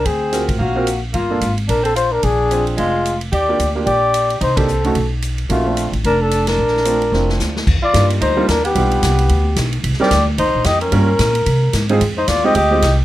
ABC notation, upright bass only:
X:1
M:4/4
L:1/8
Q:"Swing" 1/4=221
K:Bb
V:1 name="Upright bass" clef=bass
D,,3 A,, ^A,,,4 | G,,,2 _A,,,2 B,,,4 | B,,,4 F,,,4 | E,,2 D,,2 B,,,4 |
C,,4 _C,,4 | B,,,3 A,,, F,,,4 | B,,,4 F,,,2 D,,2 | [K:Eb] E,, z G,,2 D,,2 E,,2 |
=B,,,2 C,,2 D,,2 B,,,2 | C,, z D,,2 (3E,, C,, B,,, F,,2 | G,,2 B,,2 C,2 A,,2 | F,,2 E,,2 D,,2 C,,2 |]